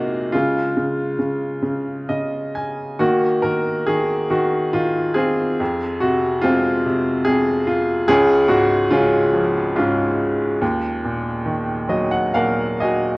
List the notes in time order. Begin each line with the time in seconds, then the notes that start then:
Already playing: C3 G#3 A#3 D#4 F4 F#4
0.33 C#3 G#3 F4
0.77 C#3
1.19 C#3
1.63 C#3
2.09 C#3 D#5
2.55 G#5
2.99 D#3 A#3 F#4
3.42 D#3 A#4
3.86 D#3 G#4
4.30 D#3 F#4
4.73 D#3 F4
5.15 C4 F4 G#4
5.60 F2
6.00 C3 F#4
6.42 F2 G#3 C4 F4
6.86 C3
7.25 F2 G#4
7.67 F4
8.08 C#2 C#4 F4 G#4
8.48 G#2 F#4
8.91 C#3 G#3 C#4 F4
9.33 F3
9.76 G#2 G#3 C#4 F4
10.61 D#2
11.04 A#2
11.46 D#3
11.89 F#3 D#5
12.11 F#5
12.34 A#2 A#4 F5 F#5
12.80 F#4 D#5 G#5